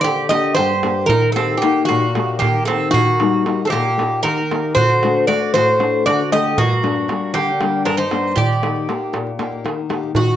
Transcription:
Already playing: A#3 D4 G4
0.01 D3 G4 D5, darbuka tek
0.18 darbuka tek
0.29 A#3 D4 G4 D#5, darbuka tek
0.55 G2 G4 C5, darbuka tek
0.83 A#3 D4 G4, darbuka tek
1.06 D#3 D#4 A#4, darbuka dum
1.23 darbuka tek
1.32 A#3 C4 A4, darbuka tek
1.36 D#4 G4
1.50 darbuka tek
1.57 G4
1.62 A#3 D#4 G4, darbuka tek
1.76 darbuka tek
1.85 A#3 F#4, darbuka tek
1.90 A#2
2.15 A#3 D#4 G4, darbuka tek
2.29 darbuka tek
2.39 D#3 A#3 G4, darbuka tek, darbuka dum
2.55 darbuka tek
2.65 A#3 C4 D#4 A4, darbuka tek
2.70 G4
2.91 D#3 A#3 F#4, darbuka dum
3.20 G3 A#3 D#4, darbuka tek
3.33 darbuka tek
3.46 A#3 D#4 G4, darbuka tek
3.65 C4 A4
3.70 A#2 A#3 G4, darbuka tek
3.86 darbuka tek
3.98 A#3 D#4 G4, darbuka tek
4.23 D#3 D#4 A#4, darbuka tek
4.51 A#3 D#4 G4, darbuka tek
4.75 D3 F#4 C5, darbuka dum
5.03 A3 D4 F#4, darbuka tek
5.16 darbuka tek
5.27 A3 D4 F#4 D5, darbuka tek
5.54 A2 F#4 C5, darbuka tek
5.68 darbuka tek
5.79 A3 D4 F#4, darbuka tek
6.06 D3 F#4 D5, darbuka tek
6.32 A3 D4 F#4 G4 D#5, darbuka tek
6.58 G2 A#3 F#4, darbuka dum
6.82 G3 A#3 D4, darbuka tek
6.96 darbuka tek
7.08 G3 A#3 D4, darbuka tek
7.34 D3 A#3 G4, darbuka tek
7.48 darbuka tek
7.60 G3 A#3 D4, darbuka tek
7.85 G2 D4 A#4, darbuka tek
7.97 D#4 C5
8.11 G3 A#3 D4, darbuka tek
8.36 D#3 G4 D5, darbuka dum
8.50 darbuka tek
8.62 A#3 D#4 G4, darbuka tek
8.76 darbuka tek
8.89 A#3 D#4 G4, darbuka tek
9.13 A#2, darbuka tek
9.27 darbuka tek
9.39 A#3 D#4 G4, darbuka tek
9.52 darbuka tek
9.64 D#3, darbuka tek
9.89 A#3 D#4 G4, darbuka tek
10.03 darbuka tek
10.15 D#3 F#4, darbuka dum

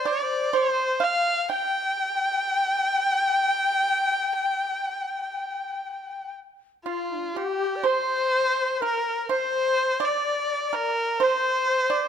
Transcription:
0.05 C5 D5
0.14 D5
0.22 C5
0.53 C5
1.00 F5
1.49 G5
6.84 F4
7.17 D4
7.34 G4
7.76 D5
7.83 C5
8.81 A#4
8.85 A#4
9.28 C5
9.33 C5
10.00 D5
10.05 D5
10.73 A#4
11.18 C5
11.23 C5
11.90 D5

